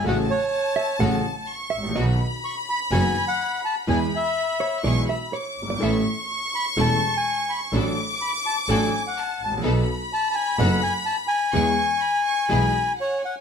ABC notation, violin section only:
X:1
M:4/4
L:1/8
Q:1/4=125
K:Bdor
V:1 name="Violin section"
a6 c'2 | b8 | b4 c' b d'2 | c'8 |
d'6 a2 | b8 | c'2 b c' b2 f g |]